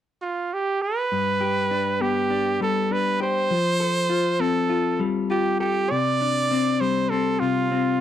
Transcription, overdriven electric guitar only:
0, 0, Header, 1, 2, 480
1, 0, Start_track
1, 0, Tempo, 598802
1, 898, Time_signature, 4, 2, 24, 8
1, 6419, End_track
2, 0, Start_track
2, 0, Title_t, "Overdriven electric guitar"
2, 0, Program_c, 0, 29
2, 896, Note_on_c, 0, 43, 62
2, 1127, Note_on_c, 0, 67, 62
2, 1370, Note_on_c, 0, 62, 53
2, 1604, Note_on_c, 0, 59, 56
2, 1836, Note_off_c, 0, 62, 0
2, 1846, Note_on_c, 0, 62, 60
2, 2090, Note_on_c, 0, 55, 60
2, 2095, Note_off_c, 0, 43, 0
2, 2323, Note_off_c, 0, 62, 0
2, 2333, Note_on_c, 0, 62, 57
2, 2565, Note_off_c, 0, 67, 0
2, 2568, Note_on_c, 0, 67, 64
2, 2810, Note_off_c, 0, 59, 0
2, 2810, Note_on_c, 0, 53, 59
2, 2814, Note_off_c, 0, 62, 0
2, 2834, Note_off_c, 0, 55, 0
2, 2834, Note_off_c, 0, 67, 0
2, 3047, Note_on_c, 0, 69, 66
2, 3284, Note_on_c, 0, 65, 59
2, 3524, Note_on_c, 0, 60, 59
2, 3754, Note_off_c, 0, 65, 0
2, 3764, Note_on_c, 0, 65, 61
2, 4003, Note_on_c, 0, 55, 64
2, 4013, Note_off_c, 0, 53, 0
2, 4241, Note_off_c, 0, 65, 0
2, 4250, Note_on_c, 0, 65, 60
2, 4251, Note_off_c, 0, 69, 0
2, 4492, Note_on_c, 0, 69, 65
2, 4730, Note_off_c, 0, 55, 0
2, 4730, Note_off_c, 0, 60, 0
2, 4733, Note_off_c, 0, 65, 0
2, 4734, Note_off_c, 0, 69, 0
2, 4738, Note_on_c, 0, 48, 62
2, 4979, Note_on_c, 0, 62, 61
2, 5219, Note_on_c, 0, 60, 59
2, 5459, Note_on_c, 0, 55, 61
2, 5693, Note_off_c, 0, 60, 0
2, 5703, Note_on_c, 0, 60, 63
2, 5932, Note_off_c, 0, 48, 0
2, 5942, Note_on_c, 0, 48, 63
2, 6173, Note_off_c, 0, 60, 0
2, 6183, Note_on_c, 0, 60, 58
2, 6207, Note_off_c, 0, 62, 0
2, 6419, Note_off_c, 0, 48, 0
2, 6419, Note_off_c, 0, 55, 0
2, 6419, Note_off_c, 0, 60, 0
2, 6419, End_track
0, 0, End_of_file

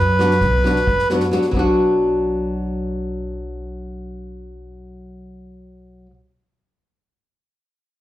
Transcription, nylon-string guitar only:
0, 0, Header, 1, 2, 480
1, 0, Start_track
1, 0, Key_signature, 2, "minor"
1, 0, Tempo, 500000
1, 7689, End_track
2, 0, Start_track
2, 0, Title_t, "Nylon-string guitar"
2, 0, Program_c, 0, 24
2, 181, Note_on_c, 0, 54, 77
2, 187, Note_on_c, 0, 59, 77
2, 193, Note_on_c, 0, 62, 73
2, 199, Note_on_c, 0, 66, 106
2, 307, Note_off_c, 0, 54, 0
2, 310, Note_off_c, 0, 59, 0
2, 313, Note_off_c, 0, 62, 0
2, 316, Note_off_c, 0, 66, 0
2, 615, Note_on_c, 0, 54, 76
2, 621, Note_on_c, 0, 59, 72
2, 630, Note_on_c, 0, 62, 77
2, 637, Note_on_c, 0, 66, 84
2, 746, Note_off_c, 0, 54, 0
2, 749, Note_off_c, 0, 59, 0
2, 753, Note_off_c, 0, 62, 0
2, 757, Note_off_c, 0, 66, 0
2, 1054, Note_on_c, 0, 59, 75
2, 1059, Note_on_c, 0, 54, 83
2, 1071, Note_on_c, 0, 62, 79
2, 1076, Note_on_c, 0, 66, 87
2, 1180, Note_off_c, 0, 59, 0
2, 1182, Note_off_c, 0, 54, 0
2, 1188, Note_off_c, 0, 62, 0
2, 1191, Note_off_c, 0, 66, 0
2, 1262, Note_on_c, 0, 54, 79
2, 1275, Note_on_c, 0, 59, 72
2, 1278, Note_on_c, 0, 62, 70
2, 1279, Note_on_c, 0, 66, 82
2, 1387, Note_off_c, 0, 54, 0
2, 1394, Note_off_c, 0, 62, 0
2, 1395, Note_off_c, 0, 59, 0
2, 1396, Note_off_c, 0, 66, 0
2, 1452, Note_on_c, 0, 54, 89
2, 1477, Note_on_c, 0, 59, 74
2, 1501, Note_on_c, 0, 62, 81
2, 1526, Note_on_c, 0, 66, 100
2, 5817, Note_off_c, 0, 54, 0
2, 5842, Note_off_c, 0, 59, 0
2, 5867, Note_off_c, 0, 62, 0
2, 5892, Note_off_c, 0, 66, 0
2, 7689, End_track
0, 0, End_of_file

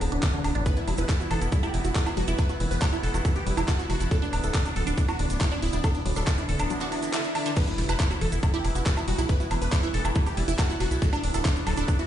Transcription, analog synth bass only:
0, 0, Header, 1, 2, 480
1, 0, Start_track
1, 0, Key_signature, 1, "minor"
1, 0, Tempo, 431655
1, 734, Time_signature, 4, 2, 24, 8
1, 13420, End_track
2, 0, Start_track
2, 0, Title_t, "Analog synth bass"
2, 0, Program_c, 0, 38
2, 14, Note_on_c, 0, 26, 98
2, 94, Note_off_c, 0, 26, 0
2, 134, Note_on_c, 0, 26, 84
2, 214, Note_off_c, 0, 26, 0
2, 494, Note_on_c, 0, 26, 92
2, 574, Note_off_c, 0, 26, 0
2, 614, Note_on_c, 0, 33, 79
2, 694, Note_off_c, 0, 33, 0
2, 974, Note_on_c, 0, 28, 95
2, 1054, Note_off_c, 0, 28, 0
2, 1094, Note_on_c, 0, 28, 84
2, 1174, Note_off_c, 0, 28, 0
2, 1454, Note_on_c, 0, 28, 94
2, 1534, Note_off_c, 0, 28, 0
2, 1574, Note_on_c, 0, 28, 78
2, 1654, Note_off_c, 0, 28, 0
2, 1934, Note_on_c, 0, 28, 95
2, 2014, Note_off_c, 0, 28, 0
2, 2054, Note_on_c, 0, 28, 84
2, 2134, Note_off_c, 0, 28, 0
2, 2414, Note_on_c, 0, 28, 94
2, 2494, Note_off_c, 0, 28, 0
2, 2533, Note_on_c, 0, 28, 81
2, 2614, Note_off_c, 0, 28, 0
2, 2894, Note_on_c, 0, 28, 92
2, 2974, Note_off_c, 0, 28, 0
2, 3013, Note_on_c, 0, 28, 85
2, 3094, Note_off_c, 0, 28, 0
2, 3373, Note_on_c, 0, 28, 97
2, 3454, Note_off_c, 0, 28, 0
2, 3493, Note_on_c, 0, 28, 79
2, 3574, Note_off_c, 0, 28, 0
2, 3854, Note_on_c, 0, 28, 99
2, 3934, Note_off_c, 0, 28, 0
2, 3974, Note_on_c, 0, 28, 84
2, 4054, Note_off_c, 0, 28, 0
2, 4334, Note_on_c, 0, 28, 92
2, 4414, Note_off_c, 0, 28, 0
2, 4453, Note_on_c, 0, 28, 84
2, 4534, Note_off_c, 0, 28, 0
2, 4813, Note_on_c, 0, 26, 89
2, 4894, Note_off_c, 0, 26, 0
2, 4933, Note_on_c, 0, 26, 81
2, 5014, Note_off_c, 0, 26, 0
2, 5294, Note_on_c, 0, 26, 89
2, 5374, Note_off_c, 0, 26, 0
2, 5414, Note_on_c, 0, 26, 81
2, 5494, Note_off_c, 0, 26, 0
2, 5774, Note_on_c, 0, 26, 99
2, 5854, Note_off_c, 0, 26, 0
2, 5894, Note_on_c, 0, 26, 81
2, 5974, Note_off_c, 0, 26, 0
2, 6254, Note_on_c, 0, 26, 88
2, 6334, Note_off_c, 0, 26, 0
2, 6374, Note_on_c, 0, 26, 86
2, 6454, Note_off_c, 0, 26, 0
2, 6734, Note_on_c, 0, 26, 94
2, 6814, Note_off_c, 0, 26, 0
2, 6854, Note_on_c, 0, 26, 85
2, 6934, Note_off_c, 0, 26, 0
2, 7214, Note_on_c, 0, 26, 96
2, 7294, Note_off_c, 0, 26, 0
2, 7334, Note_on_c, 0, 26, 77
2, 7414, Note_off_c, 0, 26, 0
2, 8654, Note_on_c, 0, 28, 94
2, 8734, Note_off_c, 0, 28, 0
2, 8774, Note_on_c, 0, 28, 82
2, 8854, Note_off_c, 0, 28, 0
2, 9134, Note_on_c, 0, 28, 93
2, 9214, Note_off_c, 0, 28, 0
2, 9254, Note_on_c, 0, 28, 74
2, 9334, Note_off_c, 0, 28, 0
2, 9614, Note_on_c, 0, 28, 96
2, 9694, Note_off_c, 0, 28, 0
2, 9734, Note_on_c, 0, 28, 81
2, 9814, Note_off_c, 0, 28, 0
2, 10093, Note_on_c, 0, 28, 94
2, 10174, Note_off_c, 0, 28, 0
2, 10213, Note_on_c, 0, 35, 83
2, 10294, Note_off_c, 0, 35, 0
2, 10573, Note_on_c, 0, 28, 97
2, 10654, Note_off_c, 0, 28, 0
2, 10693, Note_on_c, 0, 28, 86
2, 10774, Note_off_c, 0, 28, 0
2, 11053, Note_on_c, 0, 28, 95
2, 11134, Note_off_c, 0, 28, 0
2, 11173, Note_on_c, 0, 28, 78
2, 11254, Note_off_c, 0, 28, 0
2, 11533, Note_on_c, 0, 28, 99
2, 11614, Note_off_c, 0, 28, 0
2, 11654, Note_on_c, 0, 28, 80
2, 11734, Note_off_c, 0, 28, 0
2, 12014, Note_on_c, 0, 28, 93
2, 12094, Note_off_c, 0, 28, 0
2, 12134, Note_on_c, 0, 35, 81
2, 12214, Note_off_c, 0, 35, 0
2, 12494, Note_on_c, 0, 26, 94
2, 12574, Note_off_c, 0, 26, 0
2, 12614, Note_on_c, 0, 26, 85
2, 12694, Note_off_c, 0, 26, 0
2, 12974, Note_on_c, 0, 26, 100
2, 13054, Note_off_c, 0, 26, 0
2, 13094, Note_on_c, 0, 26, 79
2, 13174, Note_off_c, 0, 26, 0
2, 13420, End_track
0, 0, End_of_file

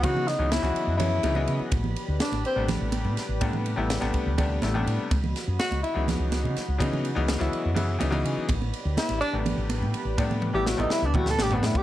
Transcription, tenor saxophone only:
0, 0, Header, 1, 2, 480
1, 0, Start_track
1, 0, Tempo, 483481
1, 33, Time_signature, 7, 3, 24, 8
1, 11743, End_track
2, 0, Start_track
2, 0, Title_t, "Tenor saxophone"
2, 0, Program_c, 0, 66
2, 40, Note_on_c, 0, 66, 96
2, 274, Note_on_c, 0, 63, 82
2, 289, Note_off_c, 0, 66, 0
2, 509, Note_off_c, 0, 63, 0
2, 515, Note_on_c, 0, 64, 88
2, 959, Note_off_c, 0, 64, 0
2, 967, Note_on_c, 0, 64, 93
2, 1658, Note_off_c, 0, 64, 0
2, 2200, Note_on_c, 0, 62, 78
2, 2418, Note_off_c, 0, 62, 0
2, 2440, Note_on_c, 0, 60, 85
2, 2658, Note_off_c, 0, 60, 0
2, 5555, Note_on_c, 0, 66, 93
2, 5775, Note_off_c, 0, 66, 0
2, 5790, Note_on_c, 0, 64, 83
2, 6012, Note_off_c, 0, 64, 0
2, 8914, Note_on_c, 0, 64, 80
2, 9135, Note_off_c, 0, 64, 0
2, 9143, Note_on_c, 0, 62, 98
2, 9289, Note_off_c, 0, 62, 0
2, 10472, Note_on_c, 0, 67, 88
2, 10589, Note_on_c, 0, 66, 87
2, 10604, Note_off_c, 0, 67, 0
2, 10722, Note_on_c, 0, 63, 80
2, 10737, Note_off_c, 0, 66, 0
2, 10839, Note_on_c, 0, 64, 95
2, 10854, Note_off_c, 0, 63, 0
2, 10976, Note_on_c, 0, 62, 81
2, 10991, Note_off_c, 0, 64, 0
2, 11078, Note_on_c, 0, 66, 101
2, 11092, Note_off_c, 0, 62, 0
2, 11218, Note_on_c, 0, 69, 100
2, 11233, Note_off_c, 0, 66, 0
2, 11342, Note_on_c, 0, 67, 88
2, 11357, Note_off_c, 0, 69, 0
2, 11463, Note_on_c, 0, 59, 68
2, 11478, Note_off_c, 0, 67, 0
2, 11578, Note_on_c, 0, 64, 83
2, 11593, Note_off_c, 0, 59, 0
2, 11688, Note_on_c, 0, 67, 94
2, 11703, Note_off_c, 0, 64, 0
2, 11743, Note_off_c, 0, 67, 0
2, 11743, End_track
0, 0, End_of_file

